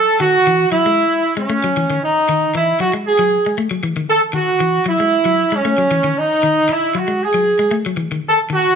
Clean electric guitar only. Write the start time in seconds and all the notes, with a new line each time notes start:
0.20 D#3
0.47 E3
0.72 F#3
0.86 G#3
1.37 G#3
1.50 A3
1.64 F#3
1.77 E3
1.90 D#3
2.29 D#3
2.55 E3
2.80 F#3
2.93 G#3
3.19 F#3
3.46 G#3
3.58 A3
3.71 F#3
3.83 E3
3.97 D#3
4.33 D#3
4.60 E3
4.86 F#3
5.00 G#3
5.25 F#3
5.52 G#3
5.65 A3
5.78 F#3
5.91 E3
6.04 D#3
6.43 D#3
6.69 muted clean electric guitar stroke
6.95 F#3
7.08 G#3
7.34 F#3
7.59 G#3
7.71 A3
7.86 F#3
7.97 E3
8.12 D#3
8.50 D#3